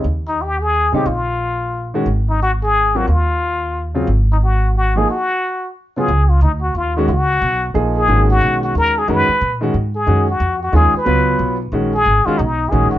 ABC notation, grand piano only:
X:1
M:3/4
L:1/8
Q:"Swing" 1/4=180
K:Ab
V:1 name="Grand piano"
z4 z [D,G,CE] | z4 z [E,A,D_G] | z4 z [_G,CFB] | z4 z [D,_G,CF] |
z4 z [F,B,EA] | z4 z [D,_G,_CF] | [K:Dbmix] z4 z [E,A,DG] | z4 [F,B,EA]2 |
[E,A,DG]4- [E,A,DG] z | [E,A,DG] z2 [E,A,DG] z2 | [E,A,DG] z3 [E,A,DF] z | [G,CFc]3 z [E,A,DG] z |
z [E,A,DG] z2 [E,A,DG]2 |]